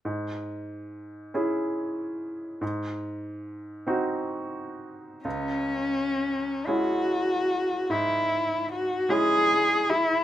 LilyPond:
<<
  \new Staff \with { instrumentName = "Cello" } { \time 12/8 \key cis \minor \tempo 4. = 47 r1. | cis'4. fis'4. e'4 fis'8 gis'4 e'8 | }
  \new Staff \with { instrumentName = "Grand piano" } { \time 12/8 \key cis \minor gis,4. <cis' e' gis'>4. gis,4. <bis dis' fis'>4. | cis,4. <gis cis' e'>4. gis,4. <gis cis' e'>4. | }
>>